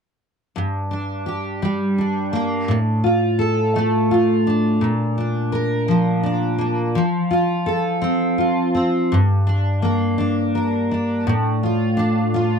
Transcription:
steel-string acoustic guitar
0.56 G2
0.91 D4
1.26 G4
1.62 G3
1.98 D4
2.33 A#3
2.68 A2
3.04 F4
3.39 A4
3.76 A3
4.11 F4
4.47 D4
4.81 A#2
5.18 D4
5.52 A#4
5.88 F3
6.23 D4
6.58 A#3
6.95 F3
7.31 F4
7.66 A4
8.02 C4
8.38 F4
8.75 C4
9.12 G2
9.47 D4
9.82 A#3
10.18 D4
10.55 A#4
10.91 D4
11.27 A2
11.63 F4
11.97 D4
12.34 F4

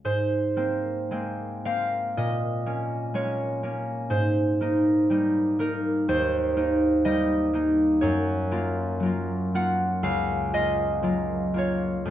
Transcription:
harp
0.05 G#2 C5
0.57 A#3 C4
1.11 G#3 A#3 C4
1.65 A#3 C4 F5
2.17 A#2 D#5
2.66 A#3 C#4
3.14 G#3 A#3 C#4 C#5
3.63 A#3 C#4
4.10 G#2 C5
4.61 A#3 D#4
5.10 G3 A#3 D#4
5.59 A#3 D#4 A#4
6.08 D#2 C5
6.57 A#3 D#4
7.05 G3 A#3 D#4 D#5
7.53 A#3 D#4
8.01 F#2 C#5
8.51 A#3 F4
9.00 F#3 A#3
9.06 F4
9.54 A#3 F4 F#5
10.03 C#2 F5
10.53 A#3 F4 D#5
11.03 F#3 A#3 F4
11.54 A#3 F4
11.58 C#5
12.05 F2

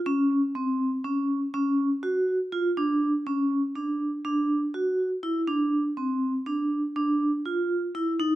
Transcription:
vibraphone
0.06 C#4
0.55 C4
1.05 C#4
1.54 C#4
2.03 F#4
2.52 F4
2.77 D4
3.27 C#4
3.76 D4
4.25 D4
4.74 F#4
5.23 E4
5.48 D4
5.97 C4
6.46 D4
6.96 D4
7.45 F4
7.95 E4
8.20 D#4

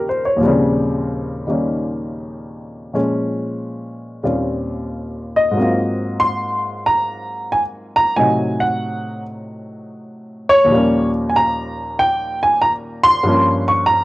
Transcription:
grand piano
Already playing: D#2 A#2 C#3 D#3 F3 G3 A#3 C4 C#4 A#4
0.09 C5
0.25 C#5
0.36 D#2 A#2
0.41 F3 G3
0.46 C#3 C4
1.47 D#3 G3 A#3 C#4 D#4
2.93 A#2 F3 G#3 C#4
4.23 D#2 A#2 G3 C4 C#4 F4
5.36 D#5
5.51 G#2 F#3
5.57 A#3 C4
5.62 F4
6.20 C6
6.86 A#5
7.52 G#5
7.96 A#5
8.16 A2 C3 F#3 D#4 G#5
8.60 F#5
10.49 C#5
10.64 D#2 A#2
10.69 F3 G3
10.74 A#3 C#4
11.30 G#5
11.36 A#5
11.99 G5
12.43 G#5
12.62 A#5
13.04 C6
13.23 G2 F3 A#3
13.29 C#4
13.68 C#6
13.86 A#5

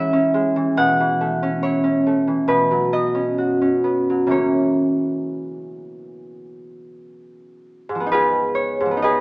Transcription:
harp
Already playing: C#3 E3 G#3 C#4 E4 E5 F#5 G#5 A#5
0.13 C#4
0.34 G#3
0.56 E3
0.77 B2 F#5
1.00 E3
1.21 A3
1.43 C#4
1.63 E4 C#5
1.84 C#4
2.07 A3
2.27 E3
2.48 B2 B4
2.71 F#3
2.93 B3 D#5
3.15 C#4
3.38 F#4
3.61 C#4
3.84 B3
4.10 F#3
4.27 C#3 E3 A#3
4.31 C#4 C#5
7.89 G#2
7.95 F3
8.00 B3
8.06 D#4
8.12 F4 G#4 B4
8.55 C#5
8.80 G#2
8.86 F3
8.91 B3
8.97 D#4
9.02 G#4 B4 D#5

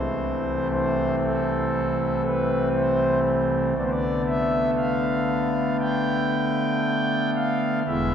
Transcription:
pipe organ
Already playing: C2 C3 E3 A3 C4 C5
0.72 C5
1.24 A4
2.26 B4
2.76 C5
3.77 D3 A3 B3 D5
3.85 C5
3.91 D5
4.28 E5
4.78 F5
5.80 G5
7.36 F5
7.88 E1 E2 G#3 B3 E4 E5

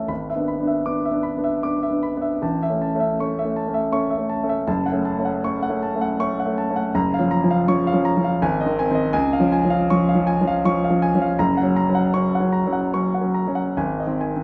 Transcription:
grand piano
Already playing: A3 C#4 E5 A5 C#6
0.08 G#1 B5
0.30 E5
0.35 B3 D4
0.48 B5
0.60 B3 D4
0.67 E5
0.85 B3 D4 D6
1.05 E5
1.11 B3 D4
1.23 B5
1.37 B3 D4
1.44 E5
1.63 B3 D4 D6
1.83 E5
1.89 B3 D4
2.03 B5
2.17 B3 D4
2.22 E5
2.42 A1 A5
2.63 E5
2.70 A3 C#4
2.82 A5
2.95 A3 C#4
3.00 E5
3.20 A3 C#4 C#6
3.39 E5
3.44 A3 C#4
3.56 A5
3.68 A3 C#4
3.74 E5
3.92 A3 C#4 C#6
4.10 E5
4.17 A3 C#4
4.30 A5
4.44 A3 C#4
4.49 E5
4.67 F#1 A5
4.86 F#5
4.92 A3 C#4
5.05 A5
5.19 A3 C#4
5.25 F#5
5.44 A3 C#4 C#6
5.63 F#5
5.70 A3 C#4
5.83 A5
5.95 A3 C#4
6.01 F#5
6.20 A3 C#4 C#6
6.40 F#5
6.46 A3 C#4
6.58 A5
6.70 A3 C#4
6.76 F#5
6.95 F#1 A#5
7.14 F5
7.19 F3 C#4
7.31 A#5
7.44 F3 C#4
7.51 F5
7.68 F3 C#4 C#6
7.87 F5
7.94 F3 C#4
8.05 A#5
8.17 F3 C#4
8.24 F5
8.42 G#1 G#5
8.61 D#5
8.66 D#3 C4
8.79 G#5
8.91 D#3 C4
8.95 D#5
9.13 C#2 G#5
9.33 F5
9.40 F3 C#4
9.52 G#5
9.65 F3 C#4
9.70 F5
9.90 F3 C#4 C#6
10.09 F5
10.15 F3 C#4
10.27 G#5
10.41 F3 C#4
10.47 F5
10.65 F3 C#4 C#6
10.84 F5
10.90 F3 C#4
11.02 G#5
11.15 F3 C#4
11.22 F5
11.39 F#1 A#5
11.57 F#5
11.63 F#3 C#4
11.76 A#5
11.89 F#3 C#4
11.95 F#5
12.14 F#3 C#4 C#6
12.35 F#5
12.40 F#3 C#4
12.53 A#5
12.67 F#3 C#4
12.73 F#5
12.94 F#3 C#4 C#6
13.14 F#5
13.21 F#3 C#4
13.34 A#5
13.48 F#3 C#4
13.55 F#5
13.77 G#1 G#5
14.00 D#5
14.07 D#3 C4
14.21 G#5
14.36 D#3 C4

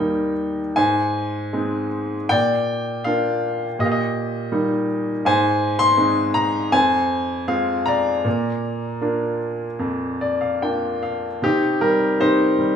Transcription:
grand piano
Already playing: D#2 G3 A#3 A#4 G5
0.00 D#4
0.76 G#2 C5 G#5
1.53 G#3 C4 D#4
2.29 A#2 D5 G5
3.04 A#3 D4 F4 F5
3.79 A#2 G4 D#5
3.86 F5
3.92 D#5
4.52 G3 A#3 D#4
5.25 G#2 C5 G#5
5.79 C6
5.97 G#3 C4 D#4
6.34 A#5
6.72 F2 C5 G#5
7.48 G#3 C4 F4 F5
7.86 D5 A#5
8.25 A#2
9.01 A#3 D4 F4
9.79 F2
10.21 D5
10.41 F5
10.62 A#3 D4 F4 G5
11.03 F5
11.42 C3 C4 D#4 G4
11.81 G3 A#4
12.20 C3 D#4 G4 C5
12.58 G3

